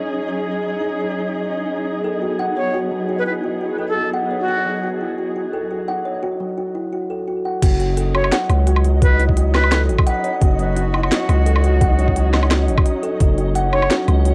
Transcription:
Already playing: F#3 C#4 D#4 G#4 D#5
2.04 B3 A4
2.22 F#4
2.39 F#5
2.57 C#5
2.74 F#4
2.91 F#3
3.09 F#4
3.18 B4
3.26 E4 B4
3.44 F#4
3.61 F#4
3.78 A4
3.88 A4
3.96 F#4
4.13 F#5
4.31 C#5
4.40 F#4
4.48 F#4
4.66 F#3
4.83 F#4
5.01 E4
5.18 F#4
5.36 F#4
5.53 A4
5.71 F#4
5.88 F#5
6.05 C#5
6.23 F#4
6.40 F#3
6.58 F#4
6.75 E4
6.93 F#4
7.10 A4
7.28 F#4
7.45 F#5
7.62 F#1 F#3 C#4 D#4 F#4 D#5, kick, closed hi-hat, crash
7.80 F#4, closed hi-hat
7.97 A4, closed hi-hat
8.15 F#4 C#5, low woodblock
8.24 low woodblock
8.32 F#5, snare, closed hi-hat
8.50 C#2 C#5, closed hi-hat, low woodblock
8.67 F#4, closed hi-hat
8.76 low woodblock
8.85 F#3, closed hi-hat
9.02 F#4 B4, kick, closed hi-hat
9.19 E4, closed hi-hat
9.29 kick
9.37 F#4, closed hi-hat
9.54 F#4 B4, snare, low woodblock
9.64 low woodblock
9.72 A4, snare, closed hi-hat, low woodblock
9.89 G#1 F#4, closed hi-hat
9.99 kick, low woodblock
10.07 F#5, closed hi-hat
10.24 C#5, closed hi-hat
10.41 F#1 F#4, kick, closed hi-hat
10.59 F#3, closed hi-hat
10.77 F#4, closed hi-hat
10.94 E4, low woodblock
11.03 low woodblock
11.11 F#4, snare, closed hi-hat
11.29 C#2 F#4, closed hi-hat, low woodblock
11.46 A4, closed hi-hat
11.56 low woodblock
11.64 F#4, closed hi-hat
11.81 F#5, kick, closed hi-hat
11.98 C#5, closed hi-hat
12.08 kick
12.16 F#4, closed hi-hat
12.33 F#3, snare, low woodblock
12.43 low woodblock
12.51 F#4, snare, closed hi-hat, low woodblock
12.68 G#1 F#4, closed hi-hat
12.78 kick, low woodblock
12.85 F#4, closed hi-hat
13.03 A4, closed hi-hat
13.20 F#1 F#4 A4, kick, closed hi-hat
13.38 F#4, closed hi-hat
13.55 F#5, closed hi-hat
13.73 C#5, low woodblock
13.82 low woodblock
13.90 F#4, snare, closed hi-hat
14.08 C#2 F#3, closed hi-hat, low woodblock
14.25 F#4, closed hi-hat

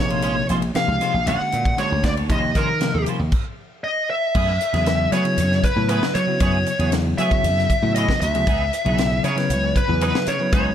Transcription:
Already playing: A#1 C3 F3 A#3 D#4 C#5
0.00 G#4
0.10 C#4 F4 C5, ride
0.22 G#3 C#4 F4 C5, hi-hat pedal, ride
0.37 muted clean electric guitar stroke
0.49 A#1 G#3 C#4 F4 C5, snare, hi-hat pedal, ride
0.62 muted clean electric guitar stroke, ride
0.74 C3 F3 A#3 D#4 G4 F5, muted slap bass stroke, snare, hi-hat pedal, ride
0.88 C#2, muted clean electric guitar stroke
1.01 G#3 C#4 F4 C5, snare, hi-hat pedal, ride
1.14 A#1, muted clean electric guitar stroke
1.26 A#1 D3 G#3 A#3 C#4 D4 F#4 C#5 F#5, hi-hat pedal, ride
1.41 muted clean electric guitar stroke
1.52 A#2, muted clean electric guitar stroke, hi-hat pedal, ride
1.65 kick, ride
1.77 D3 G#3 A#3 C#4 D4 F#4 C#5, hi-hat pedal, ride
1.92 D2, muted clean electric guitar stroke
2.04 D5, muted clean electric guitar stroke, kick, snare, hi-hat pedal, ride
2.17 D4 F#4 C#5, ride
2.28 D#2 C3 F3 G3 A#3 C#4 D#4 F4 G4 C5 D#5, kick, hi-hat pedal, ride
2.45 muted clean electric guitar stroke
2.55 D#3 G3 C#4 F4 A#4 C5, kick, snare, hi-hat pedal, ride
2.70 muted clean electric guitar stroke
2.80 C3 F3 A#3 D#4 A#4, snare, hi-hat pedal, ride
2.94 D#2, muted clean electric guitar stroke
3.06 G3 C#4 F4 C5, hi-hat pedal, ride
3.19 D#2, muted clean electric guitar stroke
3.32 kick, crash
3.84 D#5
4.10 E5
4.35 F#2 A3 B3 E4 G#4, kick, crash
4.61 muted clean electric guitar stroke, hi-hat pedal, ride
4.73 E2 C#3 F#3 B3 E4 G#4, snare, ride
4.86 muted clean electric guitar stroke, snare, hi-hat pedal, ride
5.00 muted clean electric guitar stroke
5.12 F#3 A3 B3 E4 G#4 C#5, hi-hat pedal, ride
5.25 C#3 F#3 B3 E4 G#4, muted clean electric guitar stroke, ride
5.37 F#2, hi-hat pedal, ride
5.51 muted clean electric guitar stroke, snare
5.63 B4, kick, hi-hat pedal, ride
5.76 A2 C#3 F#3 B3 E4 A4, muted clean electric guitar stroke
5.89 A3 B3 E4 G#4 B4, hi-hat pedal, ride
6.03 snare
6.14 F#3 C#5, muted clean electric guitar stroke, hi-hat pedal, ride
6.27 C#3 F#3 B3 E4 F#4, muted clean electric guitar stroke
6.40 F#2 A3 B3 E4 G#4 C#5, kick, hi-hat pedal, ride
6.66 muted clean electric guitar stroke, hi-hat pedal, ride
6.79 E2 C#3 F#3 B3 E4 G#4, ride
6.92 muted clean electric guitar stroke, snare, hi-hat pedal, ride
7.06 muted clean electric guitar stroke
7.18 F#3 A3 B3 E4 G#4 E5, hi-hat pedal, ride
7.30 C#3 F#3 B3 E4 G#4, muted clean electric guitar stroke, kick, ride
7.43 F#2, hi-hat pedal, ride
7.58 muted clean electric guitar stroke, snare
7.70 kick, hi-hat pedal, ride
7.82 A2 C#3 F#3 B3 E4 F#4, muted clean electric guitar stroke
7.95 A3 B3 E4 G#4 D#5, hi-hat pedal, ride
8.09 kick, snare
8.21 D2 E5, muted clean electric guitar stroke, hi-hat pedal, ride
8.34 C#3 F#3 B3 E4 G#4, muted clean electric guitar stroke, ride
8.47 C#2 E3 B3 D#4 G#4, kick, hi-hat pedal, ride
8.73 muted clean electric guitar stroke, hi-hat pedal, ride
8.85 B1 C#3 F#3 B3 D#4 E4 G#4, ride
8.98 muted clean electric guitar stroke, snare, hi-hat pedal, ride
9.12 muted clean electric guitar stroke
9.24 C#3 E3 B3 D#4 G#4 C#5, hi-hat pedal, ride
9.36 C#3 F#3 B3 E4 B4, muted clean electric guitar stroke, snare, ride
9.50 C#2, hi-hat pedal, ride
9.63 muted clean electric guitar stroke
9.76 B4, kick, hi-hat pedal, ride
9.88 E2 C#3 F#3 B3 E4 G#4, muted clean electric guitar stroke
10.01 E3 B3 D#4 G#4 B4, hi-hat pedal, ride
10.15 snare
10.26 C#3 C#5, muted clean electric guitar stroke, hi-hat pedal, ride
10.39 C#3 F#3 B3 E4 B4, muted clean electric guitar stroke
10.52 C#2 E3 B3 D#4 G#4 C#5, kick, hi-hat pedal, ride

